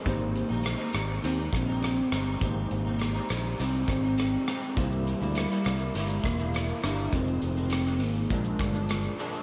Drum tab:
HH |x-x-x-x-x-x-x-x-|x-x-x-x-x-x-x-x-|x-x-x-x-x-x-x-x-|x-x-x-x-x-x-x-x-|
SH |----------------|----------------|xxxxxxxxxxxxxxxx|xxxxxxxxxxxxxxxx|
SD |----r-r---r-r-r-|----r-r---r-r-r-|----r-r---r-r-r-|----r-----r-r---|
BD |o---------o-----|o---------o-----|o---------o-----|o-------o-o-----|